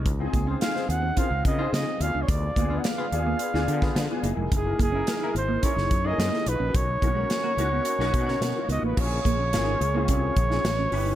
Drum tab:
CC |----------------|----------------|----------------|----------------|
HH |x-x-x-x-x-x-x-x-|x-x-x-x-x-x-x-x-|x-x-x-x-x-x-x-x-|x-x-x-x-x-x-x-x-|
SD |----oo------o---|----o----o-oo---|----o----o--oo--|----o----o-oo---|
BD |o-o-----o-o-----|o-o--------o----|o-o-----o-o-----|o-o-------o-----|

CC |x---------------|
HH |--x-x-x-x-x-x-o-|
SD |----o------oo---|
BD |o-o-----o-o-----|